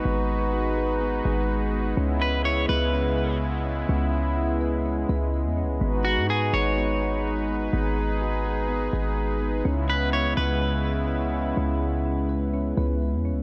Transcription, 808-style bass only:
X:1
M:4/4
L:1/16
Q:1/4=125
K:C#dor
V:1 name="808-style bass" clef=bass
G,,,8- G,,,2 G,,,6 | C,,6 C,,8- C,,2 | C,,8- C,,2 C,,3 E,,3/2 C,,3/2 | G,,,3 G,,3 G,,,8- G,,,2 |
G,,,8- G,,,2 G,,,6 | C,,6 C,,8- C,,2 | C,,8- C,,2 C,,3 E,,3/2 C,,3/2 |]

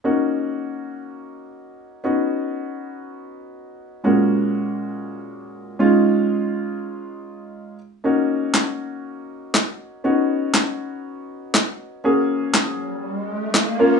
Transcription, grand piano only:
X:1
M:4/4
L:1/8
Q:1/4=120
K:Ebm
V:1 name="Grand piano"
[B,DEG]8 | [=B,^C^D^F]8 | [B,,A,B,DG]6- [B,,A,B,DG] [A,DEF]- | [A,DEF]6- [A,DEF] z |
[B,DEG]8 | [=B,^C^D^F]8 | [B,DGA]6- [B,DGA] [B,DFB] |]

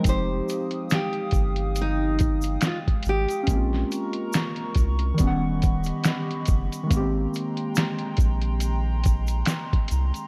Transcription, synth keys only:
X:1
M:4/4
L:1/8
Q:"Swing 16ths" 1/4=70
K:Fm
V:1 name="Synth keys"
[F,A,CEG]8 | [A,B,CDF]4 [E,G,=B,D^f]4 | [E,A,B,=B,CG]8 |]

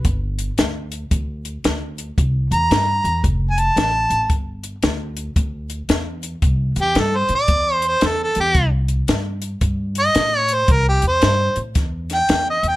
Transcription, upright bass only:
X:1
M:4/4
L:1/8
Q:"Swing" 1/4=113
K:Cmix
V:1 name="Upright bass" clef=bass
G,,,2 D,,2 D,,2 D,,2 | C,, E,, G,, E,, F,,,2 A,,, A,,, | G,,,2 D,,2 D,,2 E,,2 | C,, E,, G,, A,, E,,2 E,, E,, |
C,,2 G,,2 G,,2 A,,2 | C,, E,, G,, A,, E,,2 E,, E,, |]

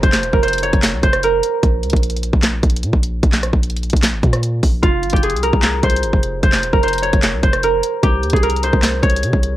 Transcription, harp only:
X:1
M:4/4
L:1/16
Q:1/4=150
K:Fm
V:1 name="Harp"
c3 B c2 d2 z2 c2 B2 z2 | z16 | z16 | F3 G A2 B2 z2 c6 |
c3 B c2 d2 z2 c2 B2 z2 | G3 A B2 c2 z2 d6 |]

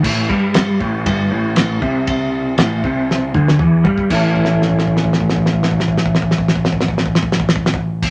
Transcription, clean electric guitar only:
X:1
M:4/4
L:1/8
Q:1/4=118
K:Amix
V:1 name="Clean electric guitar" clef=bass
A,, G,2 A,, G,, A,,2 =C,- | =C,2 A,, C,2 D, E, G, | [A,,E,A,CEA]8- | [A,,E,A,CEA]8 |]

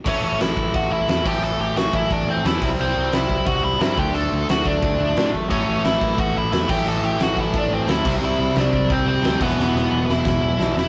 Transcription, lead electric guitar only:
X:1
M:4/4
L:1/16
Q:1/4=177
K:Ador
V:1 name="Lead electric guitar"
[^C^c]4 [Ee]4 [Ff]2 [Ee]2 [Ee]2 [Gg]2 | [Aa]2 [Gg]2 [Ff]2 [Ee]2 [Dd]2 [Cc]2 [Ee]3 z | [Cc]4 [Ee]4 [Ff]2 [Ee]2 [Ee]2 [Gg]2 | [Aa]4 [Ff]2 [Dd]8 z2 |
[^C^c]4 [Ee]4 [Ff]2 [Ee]2 [Ee]2 [Gg]2 | [Aa]2 [Gg]2 [Ff]2 [Ee]2 [Dd]2 [Cc]2 [Ee]3 z | [Ee]4 [Dd]4 [Cc]2 [Cc]4 [B,B]2- | [B,B]6 [Ee]8 [Ee]2 |]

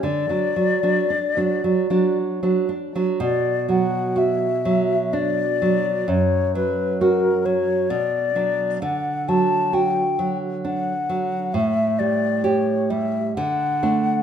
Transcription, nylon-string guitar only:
X:1
M:3/4
L:1/16
Q:1/4=65
K:D
V:1 name="Nylon-string guitar" clef=bass
D, [F,D] F, [F,D] D [F,D] F, [F,D]2 [F,D] D [F,D] | [K:Bm] B,,2 F,2 F2 F,2 D2 F,2 | F,,2 F,2 F2 F,2 B,,2 [F,D]2 | D,2 F,2 F2 F,2 D2 F,2 |
A,,2 G,2 G2 G,2 D,2 [A,D]2 |]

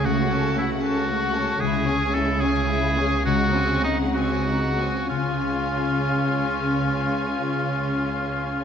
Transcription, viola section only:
X:1
M:6/8
L:1/8
Q:3/8=67
K:G#phr
V:1 name="Viola section"
A, C A, C A, C | G, C G, C G, C | G, ^B, G, B, G, B, | C6- |
C6 |]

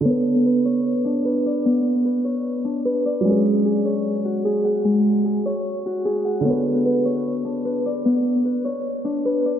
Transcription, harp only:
X:1
M:4/4
L:1/8
Q:1/4=150
K:Bdor
V:1 name="Harp"
B,2 B c2 D B d | B,2 B c2 D B d | G,2 G c2 F G f | G,2 G c2 F G f |
B,2 B c2 D B d | B,2 B c2 D B d |]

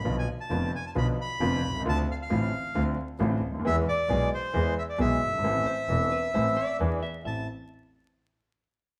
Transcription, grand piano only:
X:1
M:4/4
L:1/16
Q:1/4=134
K:Am
V:1 name="Grand piano" clef=bass
[B,,,B,,D,F,B,F]2 z2 [F,,,F,,D,F,B,F]2 z2 [B,,,B,,D,F,B,F]2 z2 [F,,,F,,D,F,B,F]2 z/2 B,,,/2 C,,/2 ^C,,/2 | [D,,D,A,CF]2 z2 [A,,,A,,D,A,CF]2 z2 [D,,D,A,CF]2 z2 [A,,,A,,D,A,CF]2 z/2 ^C,,/2 D,,/2 ^D,,/2 | [E,,E,^G,B,^G]2 z2 [B,,,B,,E,G,B,G]2 z2 [E,,E,G,B,G]2 z2 [B,,,B,,E,G,B,G]2 z/2 ^F,,,/2 =G,,,/2 ^G,,,/2 | [A,,,A,,E,A,CA]2 z2 [E,,,E,,E,A,CA]2 z2 [A,,,A,,E,A,CA]2 z2 [E,,E,B,D^G]2 z2 |
[A,,,CEA]2 z12 z2 |]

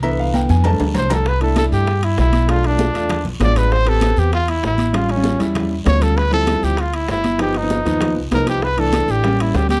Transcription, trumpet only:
X:1
M:4/4
L:1/8
Q:1/4=196
K:C
V:1 name="Trumpet"
z6 c A | B A A G2 E E2 | F D4 z d B | c A2 G F E E2 |
F ^C2 z3 ^c A | B A2 G F E E2 | G ^D4 z _B G | B A2 G2 E G G |]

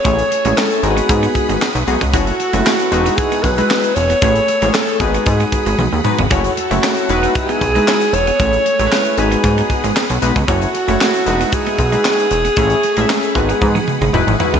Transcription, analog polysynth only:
X:1
M:4/4
L:1/16
Q:1/4=115
K:G#phr
V:1 name="Analog polysynth"
[A,CEGc]2 z [A,CEGc]3 [G,B,DF^AB]6 z2 [G,B,DFG] z | [A,CEFc]2 z [G,A,CEFB]3 [G,DEFB]4 z [G,DEFB]3 z2 | [A,CEGc]2 z [A,CEG^Bc]3 [G,=B,DF=B]6 z2 [G,B,DFB] z | [A,CEFc]2 z [A,CEFc]3 [G,DEFB]4 z [G,DEFB]3 z2 |
[A,CEGc]2 z [A,CEGAB]3 [G,B,DFB]6 z2 [G,B,DFB] z | [A,CEFc]2 z [A,CEFc]3 [G,DEFB]4 z [G,DEFB]3 z2 | [A,CEGc]2 z [A,CEGe]3 [G,B,DFB]4- [G,B,DFB] z [G,DEFB]2 [G,DEFB] z |]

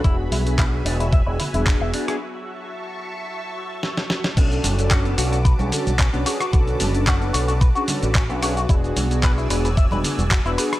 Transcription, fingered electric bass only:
X:1
M:4/4
L:1/16
Q:"Swing 16ths" 1/4=111
K:Bdor
V:1 name="Fingered electric bass" clef=bass
E,,,2 B,,,4 E,,,3 E,,, z E,,,2 E,,, z2 | z16 | B,,,2 F,,,4 B,,,3 B,,, z B,,,2 B,,, z2 | B,,,2 F,,,4 B,,,3 z2 A,,,2 B,,,3 |
E,,,2 B,,,4 E,,,3 E,,, z E,,,2 E,,, z2 |]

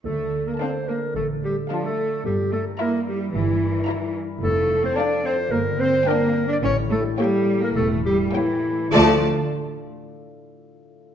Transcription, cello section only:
X:1
M:4/4
L:1/16
Q:1/4=108
K:Dm
V:1 name="Cello section"
A,3 B, C2 B,2 A,2 G,2 F, A,3 | G,2 A,2 B,2 G,2 E,6 z2 | A,3 C D2 C2 B,2 C2 B,3 D | ^C2 A,2 G,3 B, A,2 G,2 E,4 |
F,2 z12 z2 |]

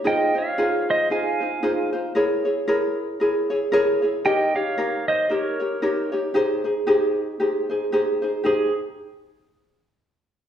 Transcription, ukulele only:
X:1
M:4/4
L:1/8
Q:"Swing" 1/4=114
K:Ab
V:1 name="Ukulele"
[EFAc] [EFc] [EFAc]2 [EFAc] [EFc] [EFAc] [EFc] | [_FABd] [FAd] [FABd]2 [FABd] [FAd] [FABd] [FAd] | [EGBd] [EGd] [EGBd]2 [EGBd] [EGd] [EGBd] [EGd] | [EGAc] [EAc] [EGAc]2 [EGAc] [EAc] [EGAc] [EAc] |
[EGAc] z6 z |]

